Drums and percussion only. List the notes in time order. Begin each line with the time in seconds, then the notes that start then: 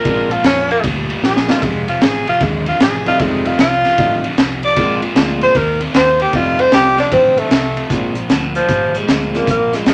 0.05 kick, ride
0.31 ride
0.44 snare, ride
0.71 ride
0.84 kick, ride
1.10 ride
1.24 snare
1.37 snare
1.50 snare
1.62 kick, ride
1.88 ride
2.01 snare, ride
2.27 ride
2.40 kick, ride
2.66 ride
2.80 snare, ride
3.06 ride
3.19 kick, ride
3.45 ride
3.59 snare, ride
3.85 snare, ride
3.98 kick, ride
4.24 ride
4.38 snare, ride
4.63 ride
4.77 kick, ride
5.02 ride
5.16 snare, ride
5.41 ride
5.55 kick, ride
5.81 ride
5.94 snare, ride
6.20 ride
6.33 kick, ride
6.59 ride
6.72 snare, ride
6.98 snare, ride
7.12 kick, ride
7.38 ride
7.51 snare, ride
7.77 ride
7.90 kick, snare, closed hi-hat
8.15 closed hi-hat
8.30 snare, closed hi-hat
8.55 closed hi-hat
8.69 kick, closed hi-hat
8.95 closed hi-hat
9.08 snare, closed hi-hat
9.35 snare, closed hi-hat
9.47 kick, closed hi-hat
9.73 snare, closed hi-hat
9.86 snare, closed hi-hat